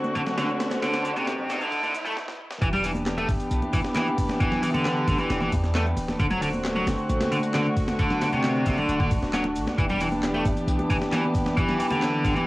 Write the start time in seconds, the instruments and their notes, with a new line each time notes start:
Already playing: string section D3 A3 C4 F#4, riser
0.04 high conga, shaker
0.15 overdriven electric guitar D3, kick, closed hi-hat, shaker
0.26 snare, low conga, shaker
0.37 overdriven electric guitar D3, snare, closed hi-hat, high conga, shaker
0.49 shaker
0.60 snare, closed hi-hat, shaker
0.70 snare, closed hi-hat, high conga, shaker
0.82 overdriven electric guitar D3, snare, closed hi-hat, shaker
0.94 snare, closed hi-hat, shaker
1.05 overdriven electric guitar D3, closed hi-hat, shaker
1.16 overdriven electric guitar C3, high conga, shaker
1.27 snare, closed hi-hat, shaker
1.38 low conga, shaker
1.49 overdriven electric guitar C3, snare, closed hi-hat, high conga, shaker
1.61 overdriven electric guitar D3, shaker
1.72 kick, closed hi-hat, shaker
1.83 overdriven electric guitar D3, closed hi-hat, high conga, shaker
1.94 808-style bass A1, closed hi-hat, shaker
2.05 overdriven electric guitar A3, low conga, shaker
2.17 snare
2.28 snare
2.51 snare
2.61 808-style bass E1, string section E3 B3 D4 G4, overdriven electric guitar E3, kick, closed hi-hat, shaker
2.73 overdriven electric guitar G3, closed hi-hat, low conga, shaker
2.84 overdriven electric guitar E3, closed hi-hat, open hi-hat, muted conga, shaker
2.95 high conga, shaker
3.06 snare, clap, closed hi-hat, shaker
3.18 overdriven electric guitar A3, muted conga, shaker
3.29 808-style bass G1, kick, closed hi-hat, open hi-hat, shaker
3.40 closed hi-hat, shaker
3.51 808-style bass B1, closed hi-hat, shaker
3.62 muted conga, high conga, shaker
3.73 overdriven electric guitar E3, kick, closed hi-hat, open hi-hat, shaker
3.85 snare, shaker
3.95 overdriven electric guitar E3, snare, clap, closed hi-hat, muted conga, high conga, shaker
4.07 shaker
4.18 kick, closed hi-hat, open hi-hat, shaker
4.29 snare, high conga, shaker
4.40 overdriven electric guitar E3, kick, closed hi-hat, muted conga, shaker
4.52 snare, low conga, shaker
4.63 overdriven electric guitar E3, closed hi-hat, open hi-hat, shaker
4.74 overdriven electric guitar D3, muted conga, high conga, shaker
4.85 snare, clap, closed hi-hat, shaker
4.97 shaker
5.08 808-style bass G1, overdriven electric guitar D3, kick, closed hi-hat, open hi-hat, high conga, shaker
5.18 overdriven electric guitar E3, muted conga, shaker
5.30 808-style bass E1, snare, closed hi-hat, shaker
5.41 overdriven electric guitar E3, high conga, shaker
5.53 808-style bass E2, kick, closed hi-hat, open hi-hat, muted conga, shaker
5.64 snare, shaker
5.74 overdriven electric guitar A3, snare, clap, closed hi-hat, high conga, shaker
5.86 shaker
5.97 808-style bass D1, closed hi-hat, open hi-hat, muted conga, shaker
6.08 snare, high conga, shaker
6.19 808-style bass D1, string section D3 A3 C4 F#4, overdriven electric guitar D3, kick, closed hi-hat, shaker
6.30 overdriven electric guitar F#3, closed hi-hat, muted conga, low conga, shaker
6.42 overdriven electric guitar D3, closed hi-hat, open hi-hat, shaker
6.53 high conga, shaker
6.65 snare, clap, closed hi-hat, shaker
6.75 overdriven electric guitar F#3, muted conga, shaker
6.87 808-style bass F#1, snare, closed hi-hat, open hi-hat, shaker
6.98 shaker
7.09 808-style bass A1, closed hi-hat, muted conga, shaker
7.21 snare, closed hi-hat, high conga, shaker
7.32 overdriven electric guitar D3, open hi-hat, shaker
7.43 closed hi-hat, shaker
7.54 overdriven electric guitar D3, snare, clap, closed hi-hat, muted conga, high conga, shaker
7.66 shaker
7.77 kick, closed hi-hat, open hi-hat, shaker
7.88 snare, muted conga, high conga, shaker
7.99 overdriven electric guitar D3, string section D4, kick, closed hi-hat, shaker
8.10 snare, low conga, shaker
8.21 overdriven electric guitar D3, snare, closed hi-hat, open hi-hat, shaker
8.32 overdriven electric guitar C3, muted conga, high conga, shaker
8.44 snare, clap, closed hi-hat, shaker
8.55 shaker
8.66 808-style bass F#1, overdriven electric guitar C3, kick, closed hi-hat, open hi-hat, muted conga, high conga, shaker
8.77 overdriven electric guitar D3, low conga, shaker
8.89 808-style bass D1, closed hi-hat, shaker
9.00 overdriven electric guitar D3, kick, high conga, shaker
9.11 808-style bass A1, kick, closed hi-hat, open hi-hat, muted conga, shaker
9.22 808-style bass D1, snare, shaker
9.33 overdriven electric guitar F#3, snare, clap, closed hi-hat, high conga, shaker
9.44 muted conga, shaker
9.56 808-style bass A1, closed hi-hat, open hi-hat, shaker
9.67 snare, high conga, shaker
9.78 808-style bass E1, string section E3 B3 G4, overdriven electric guitar E3, kick, closed hi-hat, shaker
9.89 overdriven electric guitar G3, closed hi-hat, low conga, shaker
10.00 overdriven electric guitar E3, closed hi-hat, open hi-hat, muted conga, shaker
10.12 high conga, shaker
10.23 snare, clap, closed hi-hat, shaker
10.34 overdriven electric guitar A3, muted conga, shaker
10.45 808-style bass G1, kick, closed hi-hat, open hi-hat, high conga, shaker
10.57 closed hi-hat, shaker
10.67 808-style bass B1, closed hi-hat, shaker
10.79 muted conga, high conga, shaker
10.90 overdriven electric guitar E3, kick, closed hi-hat, open hi-hat, shaker
11.01 snare, shaker
11.12 overdriven electric guitar E3, snare, clap, closed hi-hat, muted conga, high conga, shaker
11.24 shaker
11.35 kick, closed hi-hat, open hi-hat, shaker
11.46 snare, high conga, shaker
11.57 overdriven electric guitar E3, kick, closed hi-hat, muted conga, shaker
11.69 snare, low conga, shaker
11.80 overdriven electric guitar E3, closed hi-hat, open hi-hat, shaker
11.90 overdriven electric guitar D3, muted conga, high conga, shaker
12.02 snare, clap, closed hi-hat, shaker
12.13 shaker
12.24 808-style bass G1, overdriven electric guitar D3, kick, closed hi-hat, open hi-hat, shaker
12.35 overdriven electric guitar E3, muted conga, shaker